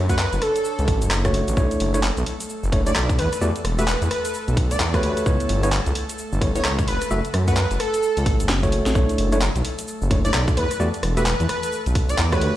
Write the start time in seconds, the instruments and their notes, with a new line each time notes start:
Already playing: detuned saw bass F#2, analog synth pad D4 C#5
0.09 tine electric piano A3 F#4 F#5, digital synth lead B4, kick, closed hi-hat, cabasa
0.19 digital synth lead B4, clap, cabasa
0.32 detuned saw bass F#1, closed hi-hat, cabasa
0.42 digital synth lead A4, cross-stick, open hi-hat
0.56 closed hi-hat, cabasa
0.65 cabasa
0.79 detuned saw bass C#2, closed hi-hat, cabasa
0.88 detuned saw bass A1, kick, open hi-hat
1.02 detuned saw bass F#1, closed hi-hat, cabasa
1.11 clap, cabasa
1.25 tine electric piano A3 F#4 C#5, kick, cross-stick, closed hi-hat, cabasa
1.34 open hi-hat
1.48 detuned saw bass A1, closed hi-hat, cabasa
1.57 detuned saw bass B1, tine electric piano A3 D4 E4 C#5, analog synth pad A3 A4, kick, cabasa
1.71 closed hi-hat, cabasa
1.80 detuned saw bass F#1, open hi-hat
1.94 tine electric piano A3 D4 E4 C#5, closed hi-hat, cabasa
2.03 clap, cabasa
2.17 detuned saw bass B1, closed hi-hat, cabasa
2.26 open hi-hat
2.40 closed hi-hat, cabasa
2.49 cabasa
2.63 detuned saw bass F#1, cabasa
2.72 tine electric piano A3 D4 E4 C#5, kick, cross-stick, open hi-hat
2.86 tine electric piano A3 D4 E4 C#5, digital synth lead D5, closed hi-hat, cabasa
2.95 detuned saw bass B1, clap, cabasa
3.09 kick, closed hi-hat, cabasa
3.18 detuned saw bass E2, digital synth lead B4, open hi-hat
3.33 cross-stick, closed hi-hat, cabasa
3.41 detuned saw bass E2, tine electric piano A3 F#4 G4 D5, cabasa
3.56 closed hi-hat, cabasa
3.65 detuned saw bass E1, cross-stick, open hi-hat
3.79 tine electric piano A3 F#4 G4 E5, digital synth lead B4, closed hi-hat, cabasa
3.88 digital synth lead B4, clap, cabasa
4.02 detuned saw bass E2, closed hi-hat, cabasa
4.11 digital synth lead B4, cross-stick, open hi-hat
4.25 digital synth lead B4, closed hi-hat, cabasa
4.34 cabasa
4.48 detuned saw bass B1, closed hi-hat, cabasa
4.57 kick, open hi-hat
4.71 digital synth lead D5, closed hi-hat, cabasa
4.80 detuned saw bass E2, clap, cabasa
4.94 tine electric piano A3 F#4 G4 C#5, digital synth lead B4, kick, cross-stick, closed hi-hat, cabasa
5.03 detuned saw bass D2, digital synth lead B4, open hi-hat
5.17 closed hi-hat, cabasa
5.26 detuned saw bass C#2, tine electric piano B3 E4 C#5, kick, cabasa
5.40 closed hi-hat, cabasa
5.49 detuned saw bass G1, open hi-hat
5.63 tine electric piano B3 E4 C#5, closed hi-hat, cabasa
5.72 clap, cabasa
5.86 detuned saw bass C#2, closed hi-hat, cabasa
5.95 open hi-hat
6.09 closed hi-hat, cabasa
6.18 cabasa
6.32 detuned saw bass G1, cabasa
6.42 tine electric piano B3 E4 C#5, kick, cross-stick, open hi-hat
6.55 tine electric piano B3 E4 C#5, digital synth lead C#5, closed hi-hat, cabasa
6.64 detuned saw bass C#2, clap, cabasa
6.79 kick, closed hi-hat, cabasa
6.87 detuned saw bass F#1, digital synth lead B4, open hi-hat
7.02 cross-stick, closed hi-hat, cabasa
7.11 detuned saw bass F#1, tine electric piano A3 F#4 E5, cabasa
7.25 closed hi-hat, cabasa
7.34 detuned saw bass F#2, cross-stick, open hi-hat
7.47 tine electric piano A3 F#4 F#5, digital synth lead B4, kick, closed hi-hat, cabasa
7.57 digital synth lead B4, clap, cabasa
7.71 detuned saw bass F#1, closed hi-hat, cabasa
7.80 digital synth lead A4, cross-stick, open hi-hat
7.94 closed hi-hat, cabasa
8.03 cabasa
8.17 detuned saw bass C#2, open hi-hat, cabasa
8.26 detuned saw bass A1, kick, open hi-hat
8.40 detuned saw bass F#1, closed hi-hat, cabasa
8.49 snare, clap, cabasa
8.63 tine electric piano A3 F#4 C#5, kick, closed hi-hat, cabasa
8.72 open hi-hat
8.86 detuned saw bass A1, snare, closed hi-hat, cabasa
8.95 detuned saw bass B1, analog synth pad A3 A4, tine electric piano A3 D4 E4 C#5, kick, cabasa
9.09 closed hi-hat, cabasa
9.18 detuned saw bass F#1, open hi-hat
9.32 tine electric piano A3 D4 E4 C#5, closed hi-hat, cabasa
9.42 clap, cabasa
9.55 detuned saw bass B1, closed hi-hat, cabasa
9.65 open hi-hat
9.79 closed hi-hat, cabasa
9.88 cabasa
10.02 detuned saw bass F#1, cabasa
10.11 tine electric piano A3 D4 E4 C#5, kick, cross-stick, open hi-hat
10.25 tine electric piano A3 D4 E4 C#5, digital synth lead D5, closed hi-hat, cabasa
10.34 detuned saw bass B1, clap, cabasa
10.48 kick, closed hi-hat, cabasa
10.57 detuned saw bass E2, digital synth lead B4, open hi-hat
10.71 cross-stick, closed hi-hat, cabasa
10.80 detuned saw bass E2, tine electric piano A3 F#4 G4 D5, cabasa
10.94 closed hi-hat, cabasa
11.03 detuned saw bass E1, cross-stick, open hi-hat
11.17 tine electric piano A3 F#4 G4 E5, digital synth lead B4, closed hi-hat, cabasa
11.26 digital synth lead B4, clap, cabasa
11.40 detuned saw bass E2, closed hi-hat, cabasa
11.49 digital synth lead B4, cross-stick, open hi-hat
11.63 digital synth lead B4, closed hi-hat, cabasa
11.72 cabasa
11.86 detuned saw bass B1, closed hi-hat, cabasa
11.95 kick, open hi-hat
12.09 digital synth lead D5, closed hi-hat, cabasa
12.18 detuned saw bass E2, clap, cabasa
12.32 tine electric piano A3 F#4 G4 C#5, digital synth lead B4, kick, cross-stick, closed hi-hat, cabasa
12.41 detuned saw bass D2, digital synth lead B4, open hi-hat